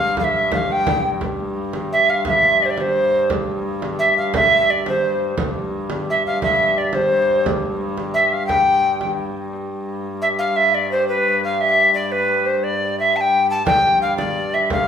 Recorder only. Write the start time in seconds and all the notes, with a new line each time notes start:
Already playing: F5
0.20 F5
0.24 E5
0.54 F5
0.72 G5
1.92 E5
2.10 F5
2.28 E5
2.62 C5 D5
2.70 D5
2.80 C5
3.99 E5
4.17 F5
4.35 E5
4.70 D5
4.88 C5
6.10 E5
6.26 F5
6.43 E5
6.78 D5
6.94 C5
8.14 E5
8.33 F5
8.46 G5
10.22 E5
10.39 F5
10.56 E5
10.74 D5
10.91 C5
11.08 B4
11.44 F5
11.61 E5
11.94 D5
12.12 B4
12.46 C5
12.63 D5
12.99 E5
13.16 A5
13.21 G5
13.50 A5
13.66 G5
14.01 F5
14.17 D5
14.54 E5
14.72 F5